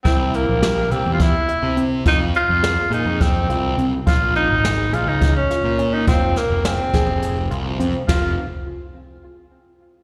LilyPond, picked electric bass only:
\new Staff \with { instrumentName = "Picked electric bass" } { \clef bass \time 7/8 \key f \minor \tempo 4 = 104 c,8. bes,,8. c,16 e,8 r8 c8. | f,8 r16 f,8 r16 bes,16 f,8. c,8 c,16 r16 | bes,,8. aes,,8. bes,,16 des,8 r8 bes,8. | f,,8 r16 f,,8 r16 bes,,16 f,,8. c,8 f,16 r16 |
f,,8 r2. | }